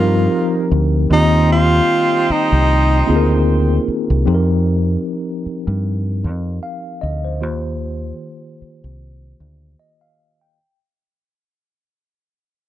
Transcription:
Already playing: fingered electric bass G2, tine electric piano F3 C4 D#4 G4 A#4, horn section G3 A#3 D#4 A#4, tenor saxophone F4
0.71 fingered electric bass D2
1.10 fingered electric bass D#2, tine electric piano D#3 A#3 C4 F4 G4, horn section G3 C4 D#4 C5, tenor saxophone D#4
1.52 tenor saxophone F4
2.30 tenor saxophone D#4, muted fingered electric bass stroke
2.52 fingered electric bass C2
3.07 fingered electric bass D2, tine electric piano A#3 C4 D#4 F4 G#4
3.16 tine electric piano A#4
3.88 muted fingered electric bass stroke
4.10 fingered electric bass C2
4.25 fingered electric bass F2, tine electric piano F3 C4 D#4 G4 A4
4.35 tine electric piano A#4
5.46 muted fingered electric bass stroke
5.67 fingered electric bass G2
6.24 fingered electric bass F2
6.63 tine electric piano F5
7.01 fingered electric bass D2, tine electric piano D#5
7.25 tine electric piano C5
7.41 fingered electric bass D#2, tine electric piano D#3 A#3 F4 G4 C5
8.62 muted fingered electric bass stroke
8.84 fingered electric bass C2
9.40 fingered electric bass D2
9.79 tine electric piano D#5
10.01 tine electric piano F5
10.41 tine electric piano G5

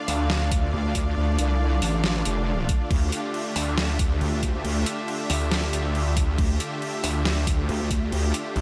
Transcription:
Already playing: supersaw synth D3 A3 F4 D5, string section D4 F5
0.08 detuned saw bass D2, open hi-hat
0.30 snare
0.52 detuned saw bass D2, kick, closed hi-hat
0.73 wobble bass D2
0.95 kick, closed hi-hat
1.17 wobble bass D2
1.38 wobble bass C2, closed hi-hat
1.82 wobble bass A1, open hi-hat
2.04 snare
2.25 wobble bass F1, closed hi-hat
2.69 kick, closed hi-hat
2.91 wobble bass D2, supersaw synth G4, kick, crash
3.12 closed hi-hat
3.33 string section E5, crash
3.56 detuned saw bass D2, open hi-hat
3.78 snare, crash
3.99 detuned saw bass D2, kick, closed hi-hat
4.21 wobble bass D2, crash
4.43 kick, closed hi-hat
4.64 wobble bass D2, crash
4.86 closed hi-hat
5.08 crash
5.30 detuned saw bass D2, open hi-hat
5.51 snare, crash
5.73 detuned saw bass D2, closed hi-hat
5.95 crash
6.06 detuned saw bass D2
6.17 kick, closed hi-hat
6.38 wobble bass D2, kick, crash
6.60 closed hi-hat
6.82 crash
7.04 detuned saw bass D2, open hi-hat
7.25 snare, crash
7.47 detuned saw bass D2, kick, closed hi-hat
7.69 wobble bass D2, crash
7.91 kick, closed hi-hat
8.12 wobble bass D2, crash
8.34 closed hi-hat
8.56 detuned saw bass C2, crash

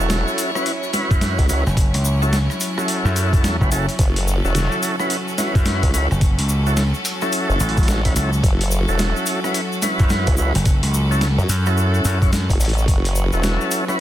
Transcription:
Already playing: string section F#3 C#4 E4 C#5
0.00 wobble bass E1, tonewheel organ C#4 E4 F#4 A4, shaker
0.10 snare, closed hi-hat, shaker
0.28 shaker
0.38 closed hi-hat, shaker
0.55 tonewheel organ C#4 E4 F#4 B4, cross-stick, shaker
0.66 closed hi-hat, shaker
0.83 shaker
0.93 tonewheel organ C#4 E4 F#4 B4, snare, closed hi-hat, shaker
1.11 slap bass F#2, kick, closed hi-hat, shaker
1.21 snare, closed hi-hat, shaker
1.38 wobble bass C#2, kick, closed hi-hat, shaker
1.49 tonewheel organ C#4 E4 F#4 B4, closed hi-hat, shaker
1.66 slap bass F#1, cross-stick, shaker
1.77 kick, closed hi-hat, shaker
1.94 slap bass C#2, closed hi-hat, shaker
2.05 shaker
2.22 tonewheel organ C#4 E4 F#4 A4, shaker
2.33 snare, closed hi-hat, shaker
2.50 cross-stick, shaker
2.60 closed hi-hat, shaker
2.77 tonewheel organ C#4 E4 F#4 A4, cross-stick, shaker
2.88 closed hi-hat, shaker
3.05 slap bass F#2, cross-stick, shaker
3.16 closed hi-hat, shaker
3.33 kick, closed hi-hat, shaker
3.44 snare, closed hi-hat, shaker
3.61 slap bass F#1, tonewheel organ C#4 E4 F#4 B4, kick, shaker
3.72 tonewheel organ C#4 E4 F#4 A4, closed hi-hat, shaker
3.89 closed hi-hat, shaker
3.99 wobble bass F#1, string section F#4 A4, kick, closed hi-hat, shaker
4.16 closed hi-hat, shaker
4.28 shaker
4.44 wobble bass E1, tonewheel organ C#4 E4 F#4 A4, shaker
4.55 snare, closed hi-hat, shaker
4.72 shaker
4.83 closed hi-hat, shaker
5.00 tonewheel organ C#4 E4 F#4 B4, cross-stick, shaker
5.10 closed hi-hat, shaker
5.28 shaker
5.38 tonewheel organ C#4 E4 F#4 B4, snare, closed hi-hat, shaker
5.55 slap bass F#2, kick, closed hi-hat, shaker
5.65 snare, closed hi-hat, shaker
5.83 wobble bass C#2, kick, closed hi-hat, shaker
5.93 tonewheel organ C#4 E4 F#4 B4, closed hi-hat, shaker
6.11 slap bass F#1, cross-stick, shaker
6.21 kick, closed hi-hat, shaker
6.39 slap bass C#2, closed hi-hat, shaker
6.49 shaker
6.66 tonewheel organ C#4 E4 F#4 A4, shaker
6.77 snare, closed hi-hat, shaker
6.94 shaker
7.05 closed hi-hat, shaker
7.21 tonewheel organ C#4 E4 F#4 A4, cross-stick, shaker
7.32 closed hi-hat, shaker
7.49 wobble bass F#1, shaker
7.60 slap bass A1, closed hi-hat, shaker
7.69 closed hi-hat
7.77 kick, closed hi-hat, shaker
7.83 closed hi-hat
7.88 wobble bass A1, snare, closed hi-hat, shaker
8.05 tonewheel organ C#4 E4 F#4 B4, kick, closed hi-hat, shaker
8.16 slap bass C#2, tonewheel organ C#4 E4 F#4 A4, closed hi-hat, shaker
8.33 shaker
8.43 wobble bass F#1, kick, closed hi-hat, shaker
8.61 closed hi-hat, shaker
8.71 shaker
8.88 wobble bass E1, tonewheel organ C#4 E4 F#4 A4, shaker
8.99 snare, closed hi-hat, shaker
9.16 shaker
9.26 closed hi-hat, shaker
9.44 tonewheel organ C#4 E4 F#4 B4, cross-stick, shaker
9.54 closed hi-hat, shaker
9.72 shaker
9.82 tonewheel organ C#4 E4 F#4 B4, snare, closed hi-hat, shaker
9.99 slap bass F#2, kick, closed hi-hat, shaker
10.09 snare, closed hi-hat, shaker
10.27 wobble bass C#2, kick, closed hi-hat, shaker
10.37 tonewheel organ C#4 E4 F#4 B4, shaker
10.55 slap bass F#1, cross-stick, closed hi-hat, shaker
10.65 kick, closed hi-hat, shaker
10.83 slap bass C#2, closed hi-hat, shaker
10.94 shaker
11.11 tonewheel organ C#4 E4 F#4 A4, shaker
11.21 snare, closed hi-hat, shaker
11.38 wobble bass F#2, shaker
11.49 slap bass F#2, closed hi-hat, shaker
11.66 tonewheel organ C#4 E4 F#4 A4, cross-stick, shaker
11.77 shaker
11.94 shaker
12.05 slap bass F#2, closed hi-hat, shaker
12.22 tonewheel organ C#4 E4 F#4 C#5, kick, closed hi-hat, shaker
12.33 snare, closed hi-hat, shaker
12.50 wobble bass F#1, kick, closed hi-hat, shaker
12.60 wobble bass A1, closed hi-hat, shaker
12.65 closed hi-hat
12.69 closed hi-hat
12.74 closed hi-hat
12.78 shaker
12.88 wobble bass F#1, string section B4, kick, closed hi-hat, shaker
13.05 closed hi-hat, shaker
13.15 shaker
13.32 wobble bass E1, tonewheel organ C#4 E4 F#4 A4, shaker
13.43 snare, closed hi-hat, shaker
13.61 shaker
13.71 closed hi-hat, shaker
13.88 tonewheel organ C#4 E4 F#4 B4, cross-stick, shaker

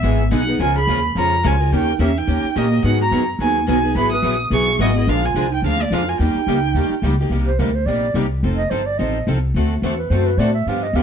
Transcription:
Already playing: clarinet B3, violin E5
0.03 upright bass G#1, steel-string acoustic guitar E3 G#3 B3 D#4 G#4
0.31 upright bass B1, steel-string acoustic guitar E3 G#3 B3 D#4 G#4, clarinet D#4, violin F#5
0.47 steel-string acoustic guitar B3 D#4 G#4
0.59 upright bass C#2, steel-string acoustic guitar C#3 F3 G#3 C#4 F4 A#4, clarinet F4, violin G#5
0.76 clarinet G#4, violin B5
0.87 upright bass D#2, steel-string acoustic guitar C#3 F3 G#3 C#4 F4 A#4
1.15 upright bass F2, steel-string acoustic guitar C#3 F3 G#3 C#4 F4 A#4, clarinet F4, violin A#5
1.43 upright bass C#2, steel-string acoustic guitar C#3 F3 G#3 C#4 F4 A#4, clarinet F4, violin G#5
1.60 steel-string acoustic guitar G#3 C#4 F4 A#4
1.72 upright bass D#2, steel-string acoustic guitar D#3 A#3 C#4 G4 A#4, clarinet D#4, violin G5
1.99 upright bass E2, steel-string acoustic guitar D#3 A#3 C#4 G4 A#4, clarinet C#4, violin E5
2.18 clarinet D#4, violin G5
2.27 upright bass D#2, steel-string acoustic guitar D#3 A#3 C#4 G4 A#4
2.44 muted upright bass stroke
2.55 upright bass A#2, steel-string acoustic guitar D#3 A#3 C#4 G4 A#4, clarinet A#3, violin D#5
2.71 steel-string acoustic guitar C#4 G4 A#4
2.83 upright bass G#2, steel-string acoustic guitar D#3 F#3 B3 D#4 G#4, clarinet D#4, violin F#5
3.00 clarinet F#4, violin A#5
3.11 upright bass F#2, steel-string acoustic guitar D#3 F#3 B3 D#4 G#4
3.39 upright bass D#2, steel-string acoustic guitar D#3 F#3 B3 D#4 G#4, clarinet D#4, violin G#5
3.67 upright bass B1, steel-string acoustic guitar D#3 F#3 B3 D#4 G#4, clarinet D#4, violin G#5
3.83 steel-string acoustic guitar B3 D#4 G#4
3.95 upright bass G#1, steel-string acoustic guitar E3 F#3 B3 E4 G#4, clarinet G#4, violin B5
4.12 clarinet B4, violin D#6
4.22 upright bass A#1, steel-string acoustic guitar E3 F#3 B3 E4 G#4
4.50 upright bass B1, steel-string acoustic guitar E3 F#3 B3 E4 G#4, clarinet G#4, violin C#6
4.79 upright bass G#1, steel-string acoustic guitar E3 F#3 B3 E4 G#4, clarinet B3, violin D#5
4.96 steel-string acoustic guitar B3 E4 G#4
5.07 upright bass A#1, steel-string acoustic guitar D3 F3 G#3 A#3 D4 F4 G#4 A#4, clarinet D4, violin F5
5.24 clarinet F4, violin G#5
5.34 upright bass C2, steel-string acoustic guitar D3 F3 G#3 A#3 D4 F4 G#4 A#4
5.50 clarinet D#4, violin G5
5.62 upright bass D2, steel-string acoustic guitar D3 F3 G#3 A#3 D4 F4 G#4 A#4, clarinet D4
5.67 violin F5
5.78 clarinet A#3, violin D5
5.91 upright bass F2, steel-string acoustic guitar D3 F3 G#3 A#3 D4 F4 G#4 A#4, clarinet D4, violin F5
6.07 steel-string acoustic guitar D4 F4 A#4, clarinet F4, violin G#5
6.19 upright bass D#2, steel-string acoustic guitar D#3 G3 A#3 D#4 G4, clarinet D#4, violin G5
6.35 muted upright bass stroke
6.47 upright bass C#2, steel-string acoustic guitar D#3 G3 A#3 D#4 G4
6.74 upright bass D#2, steel-string acoustic guitar D#3 G3 A#3 D#4 G4
6.90 muted upright bass stroke
7.02 upright bass C#2, steel-string acoustic guitar D#3 G3 A#3 D#4 G4
7.20 steel-string acoustic guitar A#3 D#4 G4
7.30 upright bass C2, steel-string acoustic guitar C3 G3 A#3 D#4 G4
7.47 clarinet C5
7.59 upright bass D2, steel-string acoustic guitar C3 G3 A#3 D#4 G4, clarinet A#4
7.75 clarinet C5
7.86 upright bass A#1, steel-string acoustic guitar C3 G3 A#3 D#4 G4, clarinet D5
8.14 upright bass C2, steel-string acoustic guitar C3 G3 A#3 D#4 G4
8.43 upright bass F1, steel-string acoustic guitar F3 C4 D#4 A4
8.57 clarinet D#5
8.70 upright bass G1, steel-string acoustic guitar F3 C4 D#4 A4, clarinet C5
8.86 clarinet D5
8.98 upright bass A1, steel-string acoustic guitar F3 C4 D#4 A4, clarinet D#5
9.27 upright bass C2, steel-string acoustic guitar F3 C4 D#4 A4
9.54 upright bass D2, steel-string acoustic guitar D3 A3 C4 F#4 A4
9.82 upright bass E2, steel-string acoustic guitar D3 A3 C4 F#4 A4
9.97 clarinet B4
10.10 upright bass F#2, steel-string acoustic guitar D3 A3 C4 F#4 A4, clarinet C5
10.26 clarinet B4
10.37 upright bass A2, steel-string acoustic guitar D3 A3 C4 F#4 A4, clarinet D5
10.54 clarinet E5
10.66 upright bass G2, steel-string acoustic guitar D3 F3 B3 D4 G4, clarinet F5
10.83 clarinet D#5
10.93 upright bass D#2, steel-string acoustic guitar D3 F3 B3 D4 G4, clarinet F5

